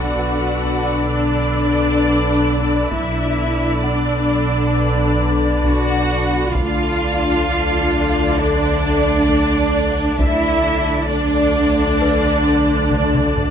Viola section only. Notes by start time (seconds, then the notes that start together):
Already playing: D3 D4
2.91 D3 D4
6.55 D3 D4
10.20 D3 D4